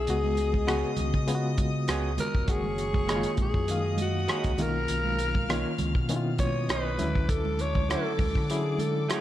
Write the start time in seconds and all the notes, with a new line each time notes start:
Already playing: F#3 C#4 F#4 G#4
0.07 C#2 C#3 G#3 B3 F#4 D#5 D#6, closed hi-hat
0.24 high conga
0.37 closed hi-hat, muted conga
0.53 kick, high conga
0.67 C#3 G#3 B3 F#4 G#4 C#5, cross-stick, closed hi-hat
0.97 C#2, closed hi-hat, high conga, low conga
1.14 C#3, kick
1.27 C#3 G#3 B3 F4, closed hi-hat
1.35 F#4
1.58 kick, closed hi-hat, muted conga, high conga
1.88 C#2 B3 F#4 G#4 C#5, cross-stick, closed hi-hat, muted conga
2.18 A#4, closed hi-hat, high conga, low conga
2.35 F1, kick
2.48 F#1 D#3 G#3 A#3 F#4 G#4 C#5 C#6, kick, closed hi-hat, muted conga
2.64 high conga
2.78 closed hi-hat, muted conga
2.93 kick, high conga
3.08 D#3 G#3 A#3 D#4 G#4 C#5, cross-stick, closed hi-hat
3.16 F4
3.23 closed hi-hat
3.37 A#1, kick, closed hi-hat, muted conga, high conga, low conga
3.42 G#4
3.54 F#2, kick
3.68 D#3 G#3 A#3 D#5 F5 D#6, closed hi-hat, muted conga
3.98 closed hi-hat, high conga
4.02 F#4
4.28 A#3 D#4 G#4 C#5, cross-stick, closed hi-hat
4.44 C#2, kick, closed hi-hat
4.58 B1 D#3 A#3 C#4 F4 A#4 F5 F6, closed hi-hat, high conga, low conga
4.88 B1, closed hi-hat
5.04 high conga
5.18 closed hi-hat, muted conga
5.35 kick, high conga
5.49 D#3 A#3 C#4 D#4 F4 C#5, cross-stick, closed hi-hat
5.78 C#2, closed hi-hat, muted conga, high conga, low conga
5.95 B2, kick
6.09 D#3 B3 C#4 E4, closed hi-hat, muted conga
6.16 F4
6.38 C#5 D#5 D#6, kick, closed hi-hat, high conga
6.69 B1 A#3 D#4 F4 B4 C#5, cross-stick, closed hi-hat
6.98 D2 D3 F#3 C#4 D4 E4 D6, closed hi-hat, muted conga, high conga, low conga
7.15 kick
7.29 A4, kick, closed hi-hat, muted conga
7.45 high conga
7.59 C#5, closed hi-hat
7.75 kick, high conga
7.88 D3 F#3 A3 C#4 E4 F#4 A4 C#5, cross-stick, closed hi-hat, muted conga
8.19 D2, kick, open hi-hat, high conga, low conga
8.35 D3, kick, cross-stick
8.50 D3 F#3 C#4 E4 G#4, closed hi-hat
8.78 A4, closed hi-hat, muted conga, high conga
9.09 A3 E4 F#4 G#4 C#5, cross-stick, closed hi-hat